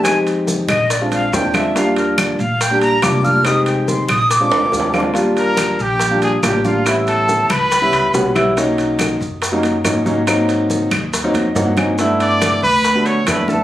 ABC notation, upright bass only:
X:1
M:4/4
L:1/8
Q:1/4=141
K:Ablyd
V:1 name="Upright bass" clef=bass
F,,3 B,,,3 E,,2- | E,,3 B,,,3 F,,,2- | F,,,3 B,,,2 D,, E,,2- | E,,3 B,,,3 =A,,,2- |
=A,,,3 ^C,,2 C,, =B,,,2- | =B,,,3 ^F,,3 A,,2- | A,,3 E,,2 F,, G,,2- | G,,3 D,,3 F,,2 |]